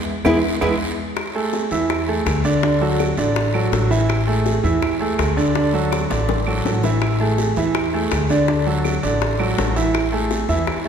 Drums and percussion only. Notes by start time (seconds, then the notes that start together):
0.25 low bongo, long guiro, claves
0.61 low bongo, long guiro, claves
1.16 high bongo, long guiro, claves
1.35 high bongo
1.53 high bongo, short guiro
1.71 short guiro
1.89 high bongo, long guiro, claves
2.08 high bongo
2.26 high bongo, low bongo, short guiro, claves
2.44 high bongo, short guiro
2.63 high bongo, long guiro
2.81 high bongo
2.99 high bongo, short guiro, claves
3.17 short guiro
3.36 high bongo, long guiro
3.54 high bongo, claves
3.72 high bongo, low bongo, short guiro
3.91 high bongo, short guiro
4.09 high bongo, long guiro, claves
4.28 high bongo
4.46 high bongo, short guiro
4.64 short guiro
4.82 high bongo, long guiro, claves
5.01 high bongo
5.19 high bongo, low bongo, short guiro, claves
5.38 high bongo, short guiro
5.55 high bongo, long guiro
5.74 high bongo
5.92 high bongo, short guiro, claves
6.11 low bongo, short guiro
6.29 low bongo, long guiro
6.47 claves
6.65 low bongo, short guiro
6.83 low bongo, short guiro
7.02 high bongo, long guiro, claves
7.20 high bongo
7.38 high bongo, short guiro
7.56 short guiro
7.74 high bongo, long guiro, claves
7.93 high bongo
8.11 high bongo, low bongo, short guiro, claves
8.29 high bongo, short guiro
8.48 high bongo, long guiro
8.67 high bongo
8.84 high bongo, short guiro, claves
9.03 short guiro
9.22 high bongo, long guiro
9.39 high bongo, claves
9.58 high bongo, low bongo, short guiro
9.76 high bongo, short guiro
9.94 high bongo, long guiro, claves
10.13 high bongo
10.31 high bongo, short guiro
10.49 short guiro
10.67 high bongo, long guiro, claves